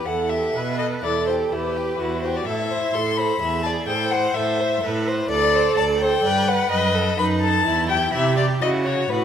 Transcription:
0.06 E2 E4 A4 F#5
0.29 G4 E5
0.55 B2 B4
0.78 A4 D#5
1.03 E2 E4 A4 D5
1.27 G4 C5
1.51 E2 E4 G4 B4
1.76 G4
1.99 E2 E4 F#4
2.23 G4 C5
2.36 D5
2.45 A2 E4 A4 E5
2.71 C5
2.93 A2 A4 C6
3.17 C5 B5
3.41 E2 G#4 E5
3.63 D5 A5
3.87 A2 A4 C5 G5
4.11 C5 F#5
4.34 A2 A4 C5 E5
4.60 C5
4.83 A2 A4 B4
5.07 C5
5.29 D2 A4 D5
5.55 C5
5.77 D2 D5 A5
6.00 C5 G5
6.24 G2 B4 D5
6.48 B4 F#5
6.71 F#2 B4 D#5
6.94 A4
7.18 F#2 D#4 B4 B5
7.41 A4 A5
7.65 E2 E4
7.89 G4 G5
8.12 C3 E4 G4 E5
8.36 G4 D5
8.62 C#3 E4 F#4 D#5
8.85 F#4 C#5
9.10 A2 F#4 B4

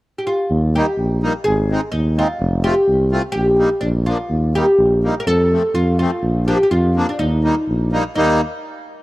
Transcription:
0.18 G4
0.27 F4
0.50 D#2
0.75 G3 A#3 D#4 G4
0.97 A#1
1.23 G3 A#3 D#4
1.44 G#1 G#4
1.70 G#3 C4 D#4
1.92 D#2 D#4
2.17 G#3 C4 D#4 F4
2.40 F1
2.64 A3 C4 F4 G4
2.88 C2
3.11 A3 C4 F4
3.32 A#1 G4
3.58 G3 A#3 D#4
3.81 A#1 D4
4.06 F3 A#3 D4 F4
4.30 D#2
4.54 G3 A#3 D#4 G4
4.78 A#1
5.04 G3 A#3 D#4
5.20 A#4
5.27 F2 A4
5.52 F3 A3 C4
5.74 F2 F4
5.99 F3 A3 C4 F4
6.23 A#1
6.47 F3 A#3 D4 G4
6.63 G4
6.71 F2 F4
6.96 F3 A#3 D4
7.09 D4
7.19 D#2 D#4
7.44 G3 A#3 D#4
7.68 A#1
7.92 G3 A#3 D#4
8.16 D#2 G3 A#3 D#4

